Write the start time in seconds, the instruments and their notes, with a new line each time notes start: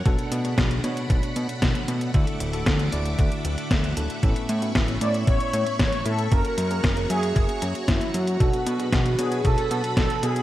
Already playing: string machine F#5
0.06 analog synth bass B1, tine electric piano B2 B3 D4 F#4 A4, string machine A3 D4 B5, kick, closed hi-hat
0.19 closed hi-hat
0.32 analog synth bass B2, closed hi-hat
0.45 tine electric piano B2 B3 D4 F#4 G#4, closed hi-hat
0.58 analog synth bass B1, kick, snare, closed hi-hat
0.71 closed hi-hat
0.84 analog synth bass B2, tine electric piano B2 B3 D4 F#4 C#5, closed hi-hat
0.97 closed hi-hat
1.10 analog synth bass B1, kick, closed hi-hat
1.23 closed hi-hat
1.36 analog synth bass B2, closed hi-hat
1.49 closed hi-hat
1.62 analog synth bass B1, kick, snare, closed hi-hat
1.75 closed hi-hat
1.88 analog synth bass B2, closed hi-hat
2.01 closed hi-hat
2.14 analog synth bass D2, tine electric piano D3 D4 E4 F#4 A4, string machine E5 D6, kick, closed hi-hat
2.27 closed hi-hat
2.40 analog synth bass D1, closed hi-hat
2.53 tine electric piano D3 D4 E4 F#4 A4, closed hi-hat
2.66 analog synth bass D2, kick, snare, closed hi-hat
2.79 closed hi-hat
2.92 analog synth bass D1, tine electric piano D3 D4 E4 F#4 D5, closed hi-hat
3.05 closed hi-hat
3.19 analog synth bass D2, kick, closed hi-hat
3.32 closed hi-hat
3.45 analog synth bass D1, closed hi-hat
3.58 closed hi-hat
3.71 analog synth bass D2, kick, snare, closed hi-hat
3.84 closed hi-hat
3.97 analog synth bass D1, tine electric piano D4 E4 F#4 A4, closed hi-hat
4.10 closed hi-hat
4.23 analog synth bass A1, tine electric piano A2 B3 C#4 E4 A4, string machine B5 C#6, kick, closed hi-hat
4.36 closed hi-hat
4.49 analog synth bass A2, closed hi-hat
4.62 tine electric piano A2 B3 C#4 E4 F#4, closed hi-hat
4.75 analog synth bass A1, kick, snare, closed hi-hat
4.88 closed hi-hat
5.01 analog synth bass A2, tine electric piano A2 B3 C#4 E4 C#5, analog polysynth D5, closed hi-hat
5.14 closed hi-hat
5.27 analog synth bass A1, analog polysynth C#5, kick, closed hi-hat
5.40 closed hi-hat
5.53 analog synth bass A2, closed hi-hat
5.67 closed hi-hat
5.79 analog synth bass A1, analog polysynth C#5, kick, snare, closed hi-hat
5.92 closed hi-hat
6.05 analog synth bass A2, analog polysynth A4, closed hi-hat
6.19 closed hi-hat
6.32 analog synth bass F#1, tine electric piano A#3 C#4 F#4 A#4, string machine F#4 C#5 A#5, analog polysynth A#4, kick, closed hi-hat
6.45 closed hi-hat
6.58 analog synth bass F#2, analog polysynth A#4, closed hi-hat
6.71 tine electric piano A#3 C#4 F#4 G#4, closed hi-hat
6.84 analog synth bass F#1, kick, snare, closed hi-hat
6.97 closed hi-hat
7.10 analog synth bass F#2, tine electric piano A#3 C#4 F#4 E5, analog polysynth G#4, closed hi-hat
7.23 closed hi-hat
7.36 analog synth bass F#1, kick, closed hi-hat
7.49 closed hi-hat
7.62 analog synth bass F#2, closed hi-hat
7.75 closed hi-hat
7.88 analog synth bass F#1, analog polysynth E4, kick, snare, closed hi-hat
8.01 closed hi-hat
8.14 analog synth bass F#2, analog polysynth F#4, closed hi-hat
8.27 closed hi-hat
8.40 analog synth bass B1, tine electric piano B2 B3 D4 F#4 A4, string machine F#4 B4 B5, kick, closed hi-hat
8.53 closed hi-hat
8.66 analog synth bass B2, closed hi-hat
8.79 tine electric piano B2 B3 D4 F#4 G#4, closed hi-hat
8.92 analog synth bass B1, kick, snare, closed hi-hat
9.06 closed hi-hat
9.19 tine electric piano B2 B3 D4 F#4 C#5, analog synth bass B2, analog polysynth G#4, closed hi-hat
9.32 closed hi-hat
9.45 analog synth bass B1, analog polysynth A4, kick, closed hi-hat
9.58 closed hi-hat
9.71 analog synth bass B2, closed hi-hat
9.84 closed hi-hat
9.97 analog synth bass B1, analog polysynth A4, kick, snare, closed hi-hat
10.10 closed hi-hat
10.23 analog synth bass B2, analog polysynth G#4, closed hi-hat
10.36 closed hi-hat